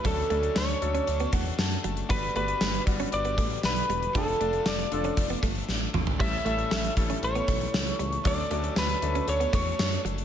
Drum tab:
CC |----------------|----------------|----------------|x---------------|
HH |xxxx-xxxxxxx-xxx|xxxx-xxxxxxx-xxx|xxxx-xxxxxxx----|-xxx-xxxxxxx-xxx|
TB |----x-------x---|----x-------x---|----x-----------|----x-------x---|
SD |----o-------o---|----o-------o---|----o-------o---|----o-------o---|
T2 |----------------|----------------|--------------o-|----------------|
FT |----------------|----------------|---------------o|----------------|
BD |o---------o-----|o-----o---o-----|o-------o-o-----|o-----o---o-----|

CC |----------------|
HH |xxxx-xxxxxxx-xxx|
TB |----x-------x---|
SD |----o-------o---|
T2 |----------------|
FT |----------------|
BD |o---------o-----|